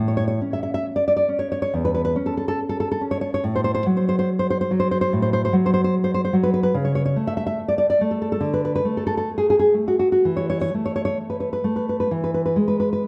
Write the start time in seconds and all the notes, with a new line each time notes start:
Already playing: A2
0.08 C#5
0.17 C#5
0.28 C#5
0.41 C#4
0.53 E5
0.63 E5
0.74 E5
0.96 D5
1.08 D5
1.17 D5
1.29 C#4
1.39 C#5
1.52 C#5
1.62 C#5
1.74 E2
1.85 B4
1.94 B4
2.05 B4
2.16 C#4
2.26 A4
2.37 A4
2.48 A4
2.69 A4
2.80 A4
2.92 A4
3.01 C#4
3.11 C#5
3.21 C#5
3.34 C#5
3.44 A2
3.56 C5
3.64 C5
3.74 C5
3.86 F#3
3.97 C5
4.09 C5
4.19 C5
4.39 C5
4.50 C5
4.61 C5
4.71 F#3
4.80 C5
4.91 C5
5.01 C5
5.13 A2
5.22 C5
5.33 C5
5.45 C5
5.53 F#3
5.66 C5
5.74 C5
5.84 C5
6.04 C5
6.14 C5
6.25 C5
6.33 F#3
6.43 B4
6.54 B4
6.63 B4
6.74 C#3
6.85 C#5
6.95 C#5
7.05 C#5
7.16 A3
7.27 E5
7.37 E5
7.47 E5
7.68 D5
7.78 D5
7.90 D5
8.01 A3
8.11 A4
8.22 A4
8.32 A4
8.41 D3
8.54 B4
8.65 B4
8.76 B4
8.85 A3
8.97 A4
9.07 A4
9.17 A4
9.38 G#4
9.50 G#4
9.59 G#4
9.74 A3
9.88 F#4
9.99 F#4
10.12 F#4
10.25 E3
10.37 C#5
10.50 C#5
10.61 C#5
10.74 A3
10.86 C#5
10.96 C#5
11.05 C#5
11.30 B4
11.40 B4
11.53 B4
11.64 A3
11.76 B4
11.89 B4
12.00 B4
12.11 E3
12.24 B4
12.34 B4
12.46 B4
12.56 G#3
12.68 B4
12.80 B4
12.93 B4